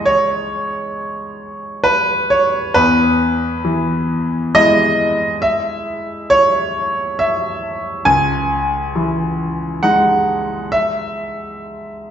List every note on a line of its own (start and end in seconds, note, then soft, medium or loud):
0.00 2.71 G#3 medium
0.00 2.72 D#4 medium
0.06 1.85 C#5 medium
1.84 2.29 B4 medium
2.30 2.75 C#5 medium
2.74 5.37 E2 medium
2.74 4.53 B4 loud
3.65 5.06 E3 medium
4.55 8.01 G#3 soft
4.55 8.02 E4 medium
4.55 5.42 D#5 loud
5.42 6.30 E5 medium
6.30 7.18 C#5 loud
7.19 8.05 E5 medium
8.05 10.68 C#2 medium
8.05 9.82 G#5 loud
8.95 10.37 E3 soft
9.83 12.11 G#3 soft
9.83 12.11 D#4 soft
9.83 10.72 F#5 medium
10.72 12.11 E5 medium